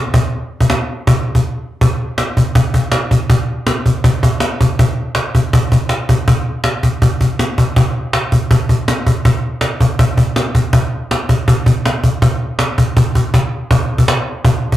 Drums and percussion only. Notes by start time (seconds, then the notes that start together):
0.14 cajon bass
0.60 cajon bass
0.70 cajon slap
1.07 cajon bass
1.35 cajon bass
1.81 cajon bass
2.18 cajon slap
2.37 cajon bass
2.55 cajon bass
2.74 cajon bass
2.92 cajon slap
3.11 cajon bass
3.30 cajon bass
3.67 cajon slap
3.86 cajon bass
4.04 cajon bass
4.23 cajon bass
4.40 cajon slap
4.61 cajon bass
4.79 cajon bass
5.15 cajon slap
5.35 cajon bass
5.53 cajon bass
5.72 cajon bass
5.89 cajon slap
6.09 cajon bass
6.28 cajon bass
6.64 cajon slap
6.83 cajon bass
7.02 cajon bass
7.21 cajon bass
7.39 cajon slap
7.58 cajon bass
7.76 cajon bass
8.13 cajon slap
8.32 cajon bass
8.51 cajon bass
8.69 cajon bass
8.88 cajon slap
9.07 cajon bass
9.25 cajon bass
9.61 cajon slap
9.80 cajon bass
9.99 cajon bass
10.17 cajon bass
10.36 cajon slap
10.55 cajon bass
10.73 cajon bass
11.11 cajon slap
11.29 cajon bass
11.48 cajon bass
11.66 cajon bass
11.85 cajon slap
12.04 cajon bass
12.22 cajon bass
12.59 cajon slap
12.78 cajon bass
12.97 cajon bass
13.15 cajon bass
13.34 cajon bass, cajon slap
13.71 cajon bass
13.98 cajon bass
14.08 cajon slap
14.45 cajon bass
14.72 cajon bass